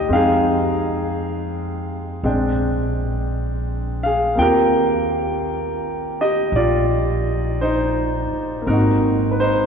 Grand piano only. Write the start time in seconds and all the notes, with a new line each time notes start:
Already playing: A#3 G4 D#5
0.09 G#3 C4 D#4
0.13 G#4 F5 G5
2.24 G#3 C4 D4 G5
4.03 G#4 F5
4.35 A#3 C4 F4 G5
4.40 G4 A#4
6.21 G4 D#5
6.56 F4 D5
7.61 D#4 C5
8.62 A#3
8.66 C4 D#4 A#4
8.73 F#4
9.31 B4
9.40 D#4 C5